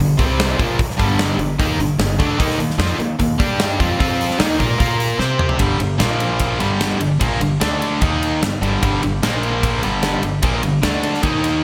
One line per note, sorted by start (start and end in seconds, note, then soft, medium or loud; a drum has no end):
0.00 0.17 G1 medium
0.00 0.14 G2 medium
0.00 0.14 D3 medium
0.17 0.56 C2 loud
0.17 0.57 C3 medium
0.17 0.58 G3 medium
0.17 0.58 C4 loud
0.17 kick loud
0.17 open hi-hat medium
0.40 snare loud
0.40 open hi-hat medium
0.57 0.78 A#1 medium
0.57 0.77 A#2 loud
0.57 0.78 F3 medium
0.57 0.78 A#3 loud
0.57 kick loud
0.57 open hi-hat medium
0.78 muted distorted electric guitar stroke medium
0.78 muted upright bass stroke soft
0.78 muted overdriven electric guitar stroke medium
0.78 kick loud
0.78 open hi-hat medium
0.90 snare soft
0.97 1.36 G1 loud
0.97 1.37 G2 medium
0.97 1.38 D3 medium
0.97 1.38 G3 loud
0.97 kick loud
0.97 open hi-hat medium
1.19 snare loud
1.19 open hi-hat medium
1.38 1.57 G1 medium
1.38 1.55 G2 medium
1.38 1.55 D3 medium
1.38 open hi-hat medium
1.59 1.78 D#2 medium
1.59 1.78 D#3 loud
1.59 1.79 A#3 medium
1.59 1.79 D#4 loud
1.59 kick loud
1.59 open hi-hat medium
1.79 1.97 G1 medium
1.79 1.95 G2 medium
1.79 1.95 D3 medium
1.79 open hi-hat medium
1.98 2.17 G1 medium
1.98 2.15 G2 medium
1.98 2.15 D3 medium
1.98 snare loud
1.98 open hi-hat medium
2.19 2.38 D2 medium
2.19 2.38 D3 loud
2.19 2.39 A3 loud
2.19 2.39 D4 loud
2.19 kick loud
2.19 open hi-hat medium
2.38 2.58 D#2 medium
2.38 2.58 D#3 loud
2.38 2.58 A#3 medium
2.38 2.59 D#4 medium
2.38 kick loud
2.38 open hi-hat medium
2.50 snare soft
2.58 2.77 D#2 medium
2.58 2.75 D#3 medium
2.58 2.75 A#3 medium
2.58 open hi-hat medium
2.70 snare soft
2.78 2.98 F2 loud
2.78 2.98 F3 loud
2.78 2.98 C4 loud
2.78 2.99 F4 medium
2.78 snare loud
2.78 open hi-hat medium
2.99 3.18 D#2 medium
2.99 3.15 D#3 medium
2.99 3.15 A#3 medium
2.99 open hi-hat medium
3.19 3.38 D#2 medium
3.19 3.35 D#3 medium
3.19 3.35 A#3 medium
3.19 kick medium
3.19 open hi-hat medium
3.38 3.77 G2 medium
3.38 3.78 G3 medium
3.38 3.79 D4 medium
3.38 3.79 G4 loud
3.38 kick loud
3.38 open hi-hat medium
3.60 snare loud
3.60 open hi-hat medium
3.79 3.98 F2 loud
3.79 3.99 F3 medium
3.79 3.99 C4 loud
3.79 3.99 F4 loud
3.79 kick loud
3.79 open hi-hat medium
4.00 4.37 F2 medium
4.00 4.38 F3 medium
4.00 4.39 C4 medium
4.00 4.39 F4 medium
4.00 kick loud
4.00 open hi-hat medium
4.21 open hi-hat medium
4.30 snare soft
4.38 4.58 D#2 loud
4.38 4.59 D#3 medium
4.38 4.57 A#3 medium
4.38 4.59 D#4 medium
4.38 snare loud
4.38 open hi-hat medium
4.59 4.78 A#2 loud
4.59 4.77 A#3 medium
4.59 4.78 F4 medium
4.59 4.79 A#4 medium
4.59 kick medium
4.59 open hi-hat medium
4.79 5.17 A#2 medium
4.79 5.18 A#3 medium
4.79 5.19 F4 loud
4.79 5.19 A#4 loud
4.79 kick loud
4.79 open hi-hat medium
5.00 open hi-hat medium
5.18 5.57 C3 medium
5.18 5.59 C4 loud
5.18 5.59 G4 medium
5.18 5.60 C5 medium
5.18 snare soft
5.39 mid tom medium
5.49 floor tom medium
5.59 5.79 G1 medium
5.59 5.77 G2 medium
5.59 5.78 D3 medium
5.59 5.80 G3 loud
5.59 kick loud
5.59 ride medium
5.79 5.98 G1 medium
5.79 5.96 G2 medium
5.79 5.96 D3 medium
5.79 ride medium
5.98 6.56 A#1 loud
5.98 6.59 A#2 medium
5.98 6.59 F3 medium
5.98 6.59 A#3 medium
5.98 snare medium
5.98 ride medium
6.20 ride medium
6.39 kick medium
6.39 ride medium
6.59 6.98 G1 medium
6.59 6.98 G2 medium
6.59 6.99 D3 medium
6.59 7.00 G3 loud
6.59 ride medium
6.81 snare medium
6.81 ride medium
6.99 7.19 G1 medium
6.99 7.16 G2 medium
6.99 7.17 D3 medium
6.99 ride medium
7.19 7.40 A#1 medium
7.19 7.40 A#2 medium
7.19 7.40 F3 medium
7.19 7.40 A#3 medium
7.19 kick loud
7.19 ride medium
7.40 7.59 G1 medium
7.40 7.57 G2 medium
7.40 7.57 D3 medium
7.40 ride medium
7.60 7.99 D2 loud
7.60 8.00 D3 medium
7.60 8.01 A3 medium
7.60 8.01 D4 loud
7.60 snare loud
7.60 ride medium
7.82 ride medium
8.01 8.39 D#2 medium
8.01 8.41 D#3 medium
8.01 8.41 A#3 medium
8.01 8.41 D#4 loud
8.01 kick loud
8.01 ride medium
8.23 ride medium
8.42 8.60 G1 medium
8.42 8.58 G2 medium
8.42 8.58 D3 medium
8.42 snare loud
8.42 ride medium
8.61 8.80 G1 medium
8.61 8.81 G2 loud
8.61 8.81 D3 medium
8.61 8.82 G3 loud
8.61 ride medium
8.82 9.01 G1 medium
8.82 9.01 G2 medium
8.82 9.01 D3 medium
8.82 9.02 G3 medium
8.82 kick loud
8.82 ride medium
9.02 9.21 G1 medium
9.02 9.18 G2 medium
9.02 9.18 D3 medium
9.02 ride medium
9.22 9.79 A#1 loud
9.22 9.82 A#2 medium
9.22 9.83 F3 loud
9.22 9.83 A#3 loud
9.22 snare loud
9.22 ride medium
9.43 ride medium
9.63 kick medium
9.63 ride medium
9.82 10.20 G1 medium
9.82 10.22 G2 medium
9.82 10.22 D3 medium
9.82 10.23 G3 loud
9.82 ride medium
10.03 snare medium
10.03 ride medium
10.22 10.41 G1 medium
10.22 10.39 G2 medium
10.22 10.39 D3 medium
10.22 ride medium
10.42 10.62 A#1 medium
10.42 10.62 A#2 medium
10.42 10.62 F3 medium
10.42 10.63 A#3 medium
10.42 kick loud
10.42 ride medium
10.63 10.82 G1 medium
10.63 10.79 G2 medium
10.63 10.79 D3 medium
10.63 ride medium
10.83 11.20 D2 loud
10.83 11.22 D3 medium
10.83 11.23 A3 medium
10.83 11.23 D4 medium
10.83 snare loud
10.83 ride medium
11.03 ride medium
11.14 snare soft
11.23 11.61 D#2 medium
11.23 11.63 D#3 medium
11.23 11.63 A#3 medium
11.23 11.63 D#4 loud
11.23 kick loud
11.23 ride medium
11.44 ride medium